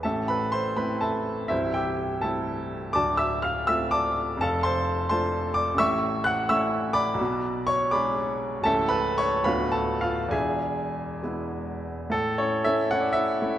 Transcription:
<<
  \new Staff \with { instrumentName = "Grand piano" } { \time 6/8 \key a \minor \tempo 4. = 82 <a' e'' a''>8 <b' b''>8 <c'' c'''>8 <b' b''>8 <a' e'' a''>4 | <e' c'' e''>8 <g' e'' g''>4 <a' e'' a''>4. | <d'' a'' d'''>8 <e'' e'''>8 <f'' f'''>8 <e'' e'''>8 <d'' a'' d'''>4 | <a' f'' a''>8 <c'' a'' c'''>4 <c'' a'' c'''>4 <d'' d'''>8 |
\key a \major <e'' cis''' e'''>4 <fis'' fis'''>8 <e'' cis''' e'''>4 <d'' b'' d'''>8~ | <d'' b'' d'''>4 <cis'' cis'''>8 <d'' b'' d'''>8 r4 | <a' e'' a''>8 <b' b''>8 <cis'' cis'''>8 <b' f'' b''>8 <a' a''>8 <f' f''>8 | <gis' e'' gis''>4. r4. |
a'8 cis''8 e''8 fis''16 d''16 e''4 | }
  \new Staff \with { instrumentName = "Grand piano" } { \time 6/8 \key a \minor <a,, a,>4. <a c' e'>4. | <c,, c,>4. <a c' e'>4. | <d,, d,>4. <a c' f'>4. | <f,, f,>4. <a d' f'>4. |
\key a \major <a,, a,>4. <a cis' e'>4. | <b,, b,>4. <gis d' gis'>4. | <cis,, cis, a cis' e'>4. <d,, d, a b f'>4. | <e,, e,>4. <gis b e'>4. |
a,8 <cis' e'>8 <a cis' e'>8 <a cis' e'>8 <cis' e'>8 <a cis' e'>8 | }
>>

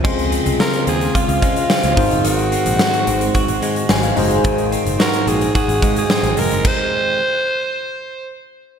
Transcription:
<<
  \new Staff \with { instrumentName = "Alto saxophone" } { \time 4/4 \key aes \mixolydian \tempo 4 = 109 r4 bes'8 aes'8 f'2 | ges'2. r4 | r4 bes'8 aes'8 aes'8. aes'8. bes'8 | c''2. r4 | }
  \new Staff \with { instrumentName = "Tine electric piano" } { \time 4/4 \key aes \mixolydian << { r1 | r2. aes''16 f''8. | r1 | r1 | } \\ { <c' f' aes' c''>2.~ <c' f' aes' c''>8 <ees' ges' aes' c''>8~ | <ees' ges' aes' c''>2.~ <ees' ges' aes' c''>8 <ees' ges' aes' c''>8~ | <ees' ges' aes' c''>2.~ <ees' ges' aes' c''>8 r8 | r1 | } >> }
  \new Staff \with { instrumentName = "Tine electric piano" } { \clef bass \time 4/4 \key aes \mixolydian des4. r2 aes,8~ | aes,4 r2 r8 aes,8~ | aes,4 r2. | r1 | }
  \new Staff \with { instrumentName = "Clean electric guitar" } { \time 4/4 \key aes \mixolydian aes8 c'8 f'8 c'8 f'8 aes8 c'8 ees8 | ees8 c'8 ges'8 c'8 ges'8 aes8 c'8 aes8 | ees8 c'8 ges'8 c'8 ges'8 aes8 c'8 aes8 | r1 | }
  \new Staff \with { instrumentName = "String machine" } { \time 4/4 \key aes \mixolydian << { <des f'>2.~ <des f'>8 <ees ges'>8~ | <ees ges'>1~ | <ees ges'>1 | r1 | } \\ { <aes c'>1~ | <aes c'>1~ | <aes c'>1 | r1 | } >> }
  \new Staff \with { instrumentName = "Picked electric bass" } { \clef bass \time 4/4 \key aes \mixolydian des,8. c,16 r8 ees,8 r16 des,16 des8 r16 des,16 aes,,16 ges,,16 | aes,,8. bes,,16 r8 aes,,8 r16 aes,,16 aes,8 aes,,8 ges,,8 | aes,,8. ges,,16 r8 bes,,8 r16 aes,,16 aes,8 r16 aes,,16 f,,16 ges,,16 | r1 | }
  \new DrumStaff \with { instrumentName = "Drums" } \drummode { \time 4/4 <cymc bd>16 hh16 hh16 hh16 sn16 hh16 hh16 hh16 <hh bd>16 hh16 <hh bd>16 hh16 sn16 hh16 <hho bd>16 hh16 | hh16 hh16 hh16 hh16 sn16 hh16 hh16 hh16 <hh bd>16 hh16 hh16 hh16 sn16 hh16 hho16 hh16 | <hh bd>16 hh16 hh16 hh16 sn16 hh16 hh16 hh16 <hh bd>16 hh16 <hh bd>16 hh16 sn16 hh16 hho16 hh16 | <cymc bd>4 r4 r4 r4 | }
>>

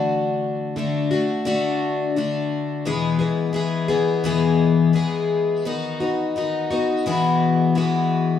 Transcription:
\new Staff \with { instrumentName = "Twelve-string acoustic guitar" } { \time 4/4 \key e \mixolydian \tempo 4 = 86 <d a d' fis'>4 <d a d' fis'>8 <a d' fis'>8 <d a d' fis'>4 <d a d' fis'>4 | <e, b, e gis b gis'>8 <e gis b gis'>8 <e gis b gis'>8 <e gis b gis'>8 <e, b, e gis b gis'>4 <e gis b gis'>4 | <dis b dis' fis'>8 <b dis' fis'>8 <dis b dis' fis'>8 <b dis' fis'>8 <e, b, e gis b fis'>4 <e gis b fis'>4 | }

